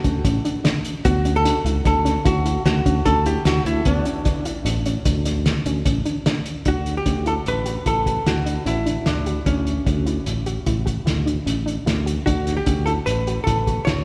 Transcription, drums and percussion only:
0.04 kick, closed hi-hat
0.25 kick, closed hi-hat
0.45 closed hi-hat
0.65 snare, closed hi-hat
0.85 closed hi-hat
1.05 kick, closed hi-hat
1.25 closed hi-hat
1.45 closed hi-hat
1.66 closed hi-hat
1.85 kick, snare, closed hi-hat
2.06 snare, closed hi-hat
2.26 kick, closed hi-hat
2.46 closed hi-hat
2.66 snare, closed hi-hat
2.86 kick, closed hi-hat
3.06 kick, closed hi-hat
3.26 closed hi-hat
3.45 snare, closed hi-hat
3.66 closed hi-hat
3.85 kick, closed hi-hat
4.05 closed hi-hat
4.25 kick, snare, closed hi-hat
4.45 closed hi-hat
4.66 closed hi-hat
4.86 closed hi-hat
5.05 kick, closed hi-hat
5.25 snare, closed hi-hat
5.46 snare, closed hi-hat
5.66 closed hi-hat
5.86 kick, closed hi-hat
6.06 closed hi-hat
6.26 snare, closed hi-hat
6.46 closed hi-hat
6.65 kick, closed hi-hat
6.86 closed hi-hat
7.06 kick, snare, closed hi-hat
7.26 closed hi-hat
7.46 closed hi-hat
7.66 closed hi-hat
7.86 kick, closed hi-hat
8.06 kick, closed hi-hat
8.26 snare, closed hi-hat
8.46 closed hi-hat
8.66 closed hi-hat
8.86 closed hi-hat
9.06 snare, closed hi-hat
9.26 closed hi-hat
9.46 kick, closed hi-hat
9.67 closed hi-hat
9.87 kick, closed hi-hat
10.07 closed hi-hat
10.26 closed hi-hat
10.46 closed hi-hat
10.66 kick, closed hi-hat
10.87 kick, closed hi-hat
11.07 snare, closed hi-hat
11.27 closed hi-hat
11.47 closed hi-hat
11.68 closed hi-hat
11.87 snare, closed hi-hat
12.07 closed hi-hat
12.27 kick, closed hi-hat
12.47 snare, closed hi-hat
12.66 kick, closed hi-hat
12.87 closed hi-hat
13.07 closed hi-hat
13.27 closed hi-hat
13.47 kick, closed hi-hat
13.67 kick, closed hi-hat
13.87 snare, closed hi-hat

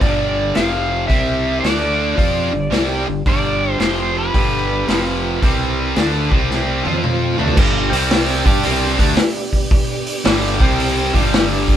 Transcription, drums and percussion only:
0.01 kick, open hi-hat
0.55 snare, open hi-hat
1.10 kick, open hi-hat
1.64 snare, open hi-hat
2.18 kick, open hi-hat
2.72 snare, open hi-hat
3.26 kick, open hi-hat
3.80 snare, open hi-hat
4.34 kick, open hi-hat
4.88 snare, open hi-hat
5.42 kick, open hi-hat
5.96 snare, open hi-hat
6.32 kick
6.51 snare
6.85 high tom
6.94 high tom
7.04 mid tom
7.39 floor tom
7.48 floor tom
7.57 kick, crash
7.93 open hi-hat
8.11 snare, open hi-hat
8.46 kick, open hi-hat
8.63 open hi-hat
8.99 kick, open hi-hat
9.17 snare, open hi-hat
9.53 kick, open hi-hat
9.71 kick, open hi-hat
10.06 open hi-hat
10.25 snare, open hi-hat
10.60 kick, open hi-hat
10.80 open hi-hat
11.14 kick, open hi-hat
11.34 snare, open hi-hat
11.68 kick, open hi-hat

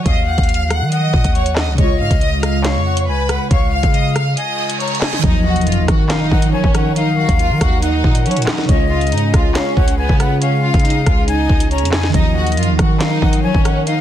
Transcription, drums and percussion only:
0.06 kick, closed hi-hat
0.38 kick, closed hi-hat
0.43 closed hi-hat
0.49 closed hi-hat
0.54 closed hi-hat
0.70 cross-stick, closed hi-hat
0.92 closed hi-hat
1.13 kick
1.24 kick, closed hi-hat
1.35 closed hi-hat
1.46 closed hi-hat
1.56 cross-stick, snare, clap
1.78 kick, closed hi-hat
2.11 kick, closed hi-hat
2.21 closed hi-hat
2.43 cross-stick, closed hi-hat
2.64 snare, clap, closed hi-hat
2.97 closed hi-hat
3.29 cross-stick, closed hi-hat
3.51 kick, closed hi-hat
3.83 kick, closed hi-hat
3.94 closed hi-hat
4.16 cross-stick, closed hi-hat
4.37 closed hi-hat
4.70 closed hi-hat
4.80 closed hi-hat
4.88 closed hi-hat
4.95 closed hi-hat
5.02 cross-stick, snare, clap
5.13 snare
5.24 kick, closed hi-hat
5.56 closed hi-hat
5.61 closed hi-hat
5.67 closed hi-hat
5.72 closed hi-hat
5.88 kick, cross-stick, closed hi-hat
6.10 snare, clap, closed hi-hat
6.31 kick
6.42 closed hi-hat
6.64 kick
6.75 cross-stick, closed hi-hat
6.96 closed hi-hat
7.29 kick, closed hi-hat
7.39 closed hi-hat
7.61 kick, cross-stick, closed hi-hat
7.82 closed hi-hat
8.04 kick
8.15 closed hi-hat
8.26 closed hi-hat
8.31 closed hi-hat
8.37 closed hi-hat
8.42 closed hi-hat
8.47 cross-stick, snare, clap
8.58 snare
8.69 kick, closed hi-hat
9.01 closed hi-hat
9.07 closed hi-hat
9.12 closed hi-hat
9.18 closed hi-hat
9.34 kick, cross-stick, closed hi-hat
9.55 snare, clap, closed hi-hat
9.77 kick
9.88 closed hi-hat
10.09 kick
10.20 cross-stick, closed hi-hat
10.42 closed hi-hat
10.74 kick, closed hi-hat
10.79 closed hi-hat
10.85 closed hi-hat
10.90 closed hi-hat
11.06 kick, cross-stick, closed hi-hat
11.28 closed hi-hat
11.49 kick
11.60 closed hi-hat
11.71 closed hi-hat
11.78 closed hi-hat
11.85 closed hi-hat
11.92 cross-stick, snare, clap
12.03 snare
12.14 kick, closed hi-hat
12.47 closed hi-hat
12.52 closed hi-hat
12.57 closed hi-hat
12.63 closed hi-hat
12.79 kick, cross-stick, closed hi-hat
13.00 snare, clap, closed hi-hat
13.22 kick
13.33 closed hi-hat
13.54 kick
13.65 cross-stick, closed hi-hat
13.87 closed hi-hat

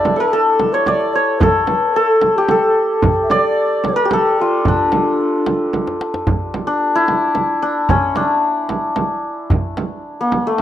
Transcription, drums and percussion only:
0.05 tombak tek, frame drum
0.59 tombak tek, frame drum
0.86 tombak tek, frame drum
1.41 tombak dum, frame drum
1.67 tombak tek, frame drum
2.21 tombak tek, frame drum
2.48 tombak tek, frame drum
3.02 frame drum, tombak dum
3.30 tombak tek, frame drum
3.84 tombak tek, frame drum
4.11 tombak tek, frame drum
4.65 frame drum, tombak dum
4.92 tombak tek, frame drum
5.46 tombak tek, frame drum
5.73 tombak tek, frame drum
5.87 tombak ka
6.01 tombak tek
6.14 tombak ka
6.27 frame drum, tombak dum
6.54 tombak tek, frame drum
7.08 tombak tek, frame drum
7.35 tombak tek, frame drum
7.89 frame drum, tombak dum
8.16 tombak tek, frame drum
8.69 tombak tek, frame drum
8.96 tombak tek, frame drum
9.50 tombak dum, frame drum
9.77 tombak tek, frame drum
10.32 tombak tek, frame drum
10.58 tombak tek

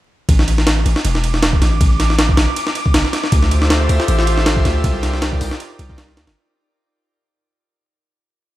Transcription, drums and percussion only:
0.29 kick, ride
0.39 snare
0.48 ride
0.58 snare
0.67 snare, ride
0.86 ride
0.96 snare
1.05 ride
1.15 snare
1.24 ride
1.34 snare
1.43 snare, ride
1.53 kick
1.62 snare, ride
1.81 kick, ride
2.00 snare, ride
2.10 snare
2.19 snare, ride
2.29 kick
2.37 snare, ride
2.56 ride
2.67 snare
2.75 ride
2.86 kick
2.94 snare, ride
3.05 snare
3.13 snare, ride
3.24 snare
3.32 kick, ride
3.43 snare
3.51 ride
3.62 snare
3.70 snare, ride
3.89 ride
4.00 snare
4.08 ride
4.19 snare
4.27 ride
4.38 snare
4.46 snare, ride
4.57 kick
4.65 snare, ride
4.84 kick, ride
5.03 snare, ride
5.14 snare
5.22 snare, ride
5.32 kick
5.41 open hi-hat
5.51 snare
5.60 ride
5.79 ride
5.89 kick
5.98 snare, ride
6.08 snare
6.17 snare, ride
6.27 snare, ride

